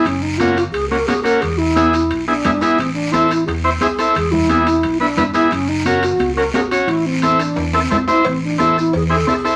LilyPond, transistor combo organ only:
\new Staff \with { instrumentName = "Transistor combo organ" } { \time 4/4 \key e \phrygian \tempo 4 = 176 r4 <ais cis' fis'>8 r4 <ais cis' fis'>8 <ais cis' fis'>8 <ais cis' fis'>8 | r4 <b e' gis'>8 r4 <b e' gis'>8 <b e' gis'>8 <b e' gis'>8 | r4 <c' e' a'>8 r4 <c' e' c''>8 <c' e' gis'>8 <c' e' a'>8 | r4 <b e' gis'>8 r4 <b e' b'>8 <b e' b'>8 <b e' gis'>8 |
r4 <cis' fis' ais'>8 r4 <cis' fis' ais'>8 <cis' fis' ais'>8 <cis' fis' cis''>8 | r4 <c' e' a'>8 r4 <c' e' a'>8 <c' e' a'>8 <c' e' c''>8 | r4 <c' e' a'>8 r4 <c' e' gis'>8 <c' e' a'>8 <c' e' a'>8 | }